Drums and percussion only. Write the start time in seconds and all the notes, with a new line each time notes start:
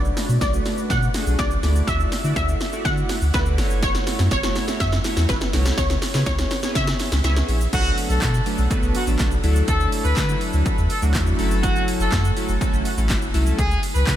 0.05 shaker
0.17 snare, open hi-hat, shaker
0.29 shaker
0.41 kick, snare, closed hi-hat, shaker
0.54 shaker
0.66 snare, open hi-hat, shaker
0.78 shaker
0.90 kick, snare, closed hi-hat, shaker
1.03 shaker
1.14 snare, open hi-hat, shaker
1.27 shaker
1.39 kick, snare, closed hi-hat, shaker
1.51 shaker
1.63 snare, open hi-hat, shaker
1.76 shaker
1.88 kick, snare, closed hi-hat, shaker
2.00 shaker
2.12 snare, open hi-hat, shaker
2.24 shaker
2.36 kick, snare, closed hi-hat, shaker
2.48 shaker
2.61 snare, open hi-hat, shaker
2.73 shaker
2.85 kick, snare, closed hi-hat, shaker
2.97 shaker
3.09 snare, open hi-hat, shaker
3.22 shaker
3.34 kick, snare, closed hi-hat, shaker
3.46 shaker
3.58 snare, open hi-hat, shaker
3.70 shaker
3.83 kick, snare, closed hi-hat, shaker
3.95 snare, shaker
4.07 snare, open hi-hat, shaker
4.19 snare, shaker
4.31 kick, snare, closed hi-hat, shaker
4.43 snare, shaker
4.55 snare, open hi-hat, shaker
4.68 snare, shaker
4.80 kick, snare, closed hi-hat, shaker
4.92 snare, shaker
5.04 snare, open hi-hat, shaker
5.17 snare, shaker
5.29 kick, snare, closed hi-hat, shaker
5.41 snare, shaker
5.53 snare, open hi-hat, shaker
5.66 snare, shaker
5.78 kick, snare, closed hi-hat, shaker
5.90 snare, shaker
6.02 snare, open hi-hat, shaker
6.14 snare, shaker
6.26 kick, snare, closed hi-hat, shaker
6.39 snare, shaker
6.51 snare, open hi-hat, shaker
6.63 snare, shaker
6.75 kick, snare, closed hi-hat, shaker
6.87 snare, shaker
6.99 snare, open hi-hat, shaker
7.12 snare, shaker
7.24 snare, closed hi-hat, shaker
7.36 snare, shaker
7.49 open hi-hat, shaker
7.61 shaker
7.73 kick, closed hi-hat, crash, shaker
7.85 shaker
7.98 open hi-hat, shaker
8.10 shaker
8.22 kick, snare, clap, closed hi-hat, shaker
8.34 shaker
8.46 open hi-hat, shaker
8.58 shaker
8.71 kick, closed hi-hat, shaker
8.83 shaker
8.95 open hi-hat, shaker
9.07 shaker
9.19 kick, snare, clap, closed hi-hat, shaker
9.31 shaker
9.44 open hi-hat, shaker
9.56 shaker
9.68 kick, closed hi-hat, shaker
9.80 shaker
9.92 open hi-hat, shaker
10.05 shaker
10.17 kick, snare, clap, closed hi-hat, shaker
10.29 shaker
10.41 open hi-hat, shaker
10.53 shaker
10.66 kick, closed hi-hat, shaker
10.78 shaker
10.90 open hi-hat, shaker
11.02 shaker
11.14 kick, snare, clap, closed hi-hat, shaker
11.26 shaker
11.39 open hi-hat, shaker
11.51 shaker
11.63 kick, closed hi-hat, shaker
11.76 shaker
11.88 open hi-hat, shaker
12.00 shaker
12.12 kick, snare, clap, closed hi-hat, shaker
12.25 shaker
12.37 open hi-hat, shaker
12.49 shaker
12.61 kick, closed hi-hat, shaker
12.74 shaker
12.85 open hi-hat, shaker
12.98 shaker
13.10 kick, snare, clap, closed hi-hat, shaker
13.22 shaker
13.34 open hi-hat, shaker
13.46 shaker
13.59 kick, closed hi-hat, shaker
13.71 shaker
13.83 open hi-hat, shaker
13.95 shaker
14.07 kick, snare, clap, closed hi-hat, shaker